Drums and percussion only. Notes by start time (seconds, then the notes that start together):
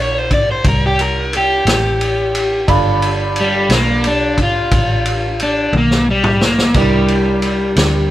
0.31 kick, ride
0.64 kick, ride
0.99 ride
1.33 ride
1.67 snare, ride
2.01 ride
2.35 ride
2.68 kick, ride
3.02 ride
3.36 ride
3.70 snare, ride
4.04 ride
4.38 kick, ride
4.71 kick, ride
5.06 ride
5.40 ride
5.73 high tom
5.91 snare
6.24 mid tom
6.41 snare
6.59 snare
6.74 kick, ride, splash
7.08 ride
7.42 ride
7.76 snare, ride